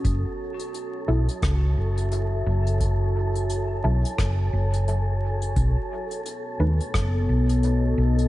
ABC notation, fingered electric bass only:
X:1
M:4/4
L:1/8
Q:"Swing 16ths" 1/4=87
K:F#dor
V:1 name="Fingered electric bass" clef=bass
F,,, z2 B,,, C,, F,,,2 F,,,- | F,,,3 B,,, F,,, F,,,3 | B,,, z2 D,, F,,, B,,,2 B,,, |]